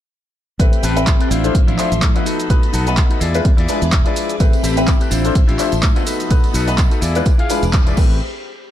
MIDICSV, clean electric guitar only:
0, 0, Header, 1, 3, 480
1, 0, Start_track
1, 0, Key_signature, 0, "minor"
1, 0, Tempo, 476190
1, 599, Time_signature, 4, 2, 24, 8
1, 8780, End_track
2, 0, Start_track
2, 0, Title_t, "Clean electric guitar"
2, 0, Program_c, 0, 27
2, 833, Note_on_c, 0, 60, 115
2, 840, Note_on_c, 0, 67, 100
2, 845, Note_on_c, 0, 69, 100
2, 853, Note_on_c, 0, 71, 127
2, 969, Note_off_c, 0, 60, 0
2, 973, Note_off_c, 0, 67, 0
2, 975, Note_off_c, 0, 69, 0
2, 979, Note_off_c, 0, 71, 0
2, 1204, Note_on_c, 0, 60, 87
2, 1211, Note_on_c, 0, 67, 76
2, 1218, Note_on_c, 0, 69, 78
2, 1225, Note_on_c, 0, 71, 92
2, 1310, Note_off_c, 0, 60, 0
2, 1314, Note_on_c, 0, 62, 94
2, 1315, Note_off_c, 0, 71, 0
2, 1318, Note_off_c, 0, 67, 0
2, 1319, Note_on_c, 0, 64, 87
2, 1322, Note_off_c, 0, 69, 0
2, 1326, Note_on_c, 0, 65, 83
2, 1332, Note_on_c, 0, 72, 106
2, 1610, Note_off_c, 0, 62, 0
2, 1612, Note_off_c, 0, 64, 0
2, 1616, Note_off_c, 0, 65, 0
2, 1619, Note_off_c, 0, 72, 0
2, 1684, Note_on_c, 0, 62, 110
2, 1689, Note_on_c, 0, 64, 101
2, 1697, Note_on_c, 0, 65, 102
2, 1704, Note_on_c, 0, 72, 120
2, 1928, Note_off_c, 0, 62, 0
2, 1930, Note_off_c, 0, 64, 0
2, 1935, Note_off_c, 0, 65, 0
2, 1938, Note_off_c, 0, 72, 0
2, 2164, Note_on_c, 0, 62, 89
2, 2172, Note_on_c, 0, 64, 81
2, 2178, Note_on_c, 0, 65, 82
2, 2185, Note_on_c, 0, 71, 100
2, 2273, Note_on_c, 0, 63, 91
2, 2275, Note_off_c, 0, 62, 0
2, 2278, Note_off_c, 0, 64, 0
2, 2280, Note_off_c, 0, 71, 0
2, 2280, Note_on_c, 0, 66, 85
2, 2282, Note_off_c, 0, 65, 0
2, 2286, Note_on_c, 0, 69, 85
2, 2292, Note_on_c, 0, 71, 100
2, 2670, Note_off_c, 0, 63, 0
2, 2674, Note_off_c, 0, 66, 0
2, 2677, Note_off_c, 0, 69, 0
2, 2680, Note_off_c, 0, 71, 0
2, 2749, Note_on_c, 0, 63, 113
2, 2755, Note_on_c, 0, 66, 102
2, 2763, Note_on_c, 0, 69, 106
2, 2769, Note_on_c, 0, 71, 123
2, 2887, Note_off_c, 0, 63, 0
2, 2890, Note_off_c, 0, 66, 0
2, 2894, Note_off_c, 0, 69, 0
2, 2897, Note_off_c, 0, 71, 0
2, 3120, Note_on_c, 0, 63, 86
2, 3128, Note_on_c, 0, 66, 80
2, 3134, Note_on_c, 0, 69, 81
2, 3139, Note_on_c, 0, 71, 96
2, 3228, Note_on_c, 0, 64, 93
2, 3232, Note_off_c, 0, 66, 0
2, 3233, Note_off_c, 0, 63, 0
2, 3236, Note_on_c, 0, 65, 87
2, 3239, Note_off_c, 0, 69, 0
2, 3242, Note_off_c, 0, 71, 0
2, 3243, Note_on_c, 0, 68, 85
2, 3250, Note_on_c, 0, 74, 103
2, 3527, Note_off_c, 0, 64, 0
2, 3531, Note_off_c, 0, 65, 0
2, 3534, Note_off_c, 0, 68, 0
2, 3538, Note_off_c, 0, 74, 0
2, 3598, Note_on_c, 0, 64, 116
2, 3605, Note_on_c, 0, 65, 101
2, 3613, Note_on_c, 0, 68, 101
2, 3619, Note_on_c, 0, 74, 123
2, 3845, Note_off_c, 0, 64, 0
2, 3849, Note_off_c, 0, 65, 0
2, 3852, Note_off_c, 0, 68, 0
2, 3855, Note_off_c, 0, 74, 0
2, 4079, Note_on_c, 0, 64, 88
2, 4086, Note_on_c, 0, 65, 86
2, 4092, Note_on_c, 0, 68, 80
2, 4099, Note_on_c, 0, 74, 98
2, 4379, Note_off_c, 0, 64, 0
2, 4383, Note_off_c, 0, 65, 0
2, 4386, Note_off_c, 0, 68, 0
2, 4389, Note_off_c, 0, 74, 0
2, 4667, Note_on_c, 0, 60, 114
2, 4673, Note_on_c, 0, 67, 101
2, 4679, Note_on_c, 0, 69, 101
2, 4686, Note_on_c, 0, 71, 123
2, 4806, Note_off_c, 0, 60, 0
2, 4809, Note_off_c, 0, 67, 0
2, 4812, Note_off_c, 0, 69, 0
2, 4816, Note_off_c, 0, 71, 0
2, 5037, Note_on_c, 0, 60, 86
2, 5044, Note_on_c, 0, 67, 81
2, 5051, Note_on_c, 0, 69, 79
2, 5058, Note_on_c, 0, 71, 100
2, 5139, Note_off_c, 0, 60, 0
2, 5143, Note_on_c, 0, 62, 95
2, 5150, Note_on_c, 0, 64, 84
2, 5152, Note_off_c, 0, 67, 0
2, 5156, Note_on_c, 0, 65, 87
2, 5158, Note_off_c, 0, 69, 0
2, 5161, Note_off_c, 0, 71, 0
2, 5164, Note_on_c, 0, 72, 107
2, 5444, Note_off_c, 0, 62, 0
2, 5448, Note_off_c, 0, 64, 0
2, 5451, Note_off_c, 0, 65, 0
2, 5455, Note_off_c, 0, 72, 0
2, 5516, Note_on_c, 0, 62, 110
2, 5523, Note_on_c, 0, 64, 101
2, 5530, Note_on_c, 0, 65, 104
2, 5536, Note_on_c, 0, 67, 121
2, 5764, Note_off_c, 0, 62, 0
2, 5767, Note_off_c, 0, 64, 0
2, 5771, Note_off_c, 0, 65, 0
2, 5774, Note_off_c, 0, 67, 0
2, 5999, Note_on_c, 0, 62, 92
2, 6005, Note_on_c, 0, 64, 84
2, 6013, Note_on_c, 0, 65, 79
2, 6018, Note_on_c, 0, 72, 97
2, 6101, Note_off_c, 0, 62, 0
2, 6105, Note_on_c, 0, 63, 94
2, 6107, Note_off_c, 0, 65, 0
2, 6111, Note_on_c, 0, 66, 86
2, 6115, Note_off_c, 0, 64, 0
2, 6115, Note_off_c, 0, 72, 0
2, 6119, Note_on_c, 0, 69, 83
2, 6124, Note_on_c, 0, 71, 101
2, 6507, Note_off_c, 0, 63, 0
2, 6510, Note_off_c, 0, 66, 0
2, 6514, Note_off_c, 0, 69, 0
2, 6516, Note_off_c, 0, 71, 0
2, 6588, Note_on_c, 0, 63, 115
2, 6595, Note_on_c, 0, 66, 106
2, 6601, Note_on_c, 0, 69, 102
2, 6607, Note_on_c, 0, 71, 126
2, 6726, Note_off_c, 0, 63, 0
2, 6730, Note_off_c, 0, 66, 0
2, 6733, Note_off_c, 0, 69, 0
2, 6736, Note_off_c, 0, 71, 0
2, 6960, Note_on_c, 0, 63, 87
2, 6966, Note_on_c, 0, 66, 81
2, 6973, Note_on_c, 0, 69, 82
2, 6978, Note_on_c, 0, 71, 92
2, 7068, Note_on_c, 0, 64, 98
2, 7070, Note_off_c, 0, 66, 0
2, 7073, Note_off_c, 0, 63, 0
2, 7074, Note_on_c, 0, 65, 86
2, 7077, Note_off_c, 0, 69, 0
2, 7081, Note_on_c, 0, 68, 88
2, 7082, Note_off_c, 0, 71, 0
2, 7086, Note_on_c, 0, 74, 105
2, 7367, Note_off_c, 0, 64, 0
2, 7370, Note_off_c, 0, 65, 0
2, 7373, Note_off_c, 0, 68, 0
2, 7376, Note_off_c, 0, 74, 0
2, 7441, Note_on_c, 0, 64, 114
2, 7448, Note_on_c, 0, 65, 101
2, 7455, Note_on_c, 0, 68, 101
2, 7461, Note_on_c, 0, 77, 124
2, 7687, Note_off_c, 0, 64, 0
2, 7690, Note_off_c, 0, 65, 0
2, 7693, Note_off_c, 0, 68, 0
2, 7696, Note_off_c, 0, 77, 0
2, 7926, Note_on_c, 0, 64, 91
2, 7932, Note_on_c, 0, 65, 81
2, 7937, Note_on_c, 0, 68, 83
2, 7945, Note_on_c, 0, 74, 100
2, 8035, Note_off_c, 0, 64, 0
2, 8036, Note_off_c, 0, 74, 0
2, 8038, Note_off_c, 0, 65, 0
2, 8040, Note_off_c, 0, 68, 0
2, 8040, Note_on_c, 0, 71, 93
2, 8050, Note_on_c, 0, 60, 79
2, 8264, Note_off_c, 0, 60, 0
2, 8264, Note_off_c, 0, 71, 0
2, 8780, End_track
3, 0, Start_track
3, 0, Title_t, "Muted clean electric guitar strokes"
3, 2990, Note_on_c, 9, 29, 33
3, 3090, Note_off_c, 9, 29, 0
3, 4904, Note_on_c, 9, 29, 34
3, 5005, Note_off_c, 9, 29, 0
3, 6828, Note_on_c, 9, 29, 33
3, 6929, Note_off_c, 9, 29, 0
3, 8780, End_track
0, 0, End_of_file